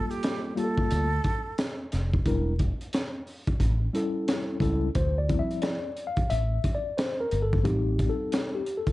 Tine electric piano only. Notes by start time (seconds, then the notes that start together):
Already playing: G3 A#3 F4 A4
0.55 G3 A#3 F4 G4
0.64 A4
2.26 G3 D4 E4 A#4
3.93 G3 C#4 E4 A4
4.60 G3 C#4 E4 A4
4.96 C5
5.18 D5
5.28 F3 G3 C4 E4
5.39 E5
5.62 D5
6.07 F5
6.30 E5
6.75 D5
6.97 C5
7.20 A#4
7.42 A4
7.63 G3 C4 D#4 G4
8.09 A4
8.55 G4
8.77 A4